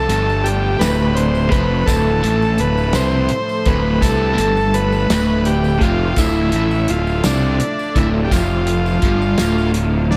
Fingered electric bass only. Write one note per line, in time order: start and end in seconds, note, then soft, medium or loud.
0.08 0.77 G1 medium
0.80 1.48 D1 medium
1.52 1.86 F1 medium
1.87 2.21 D1 medium
2.23 2.57 A1 medium
2.60 2.93 D1 medium
2.95 3.29 C2 medium
3.67 4.00 D1 medium
4.02 4.36 C2 medium
4.38 5.06 G1 medium
5.10 5.77 D1 medium
5.81 6.15 F1 medium
6.17 6.51 D1 medium
6.53 6.86 A1 medium
6.89 7.22 D1 medium
7.26 7.58 C2 medium
7.96 8.30 D1 medium
8.32 9.00 F1 medium
9.03 9.37 G1 medium
9.39 10.17 D1 medium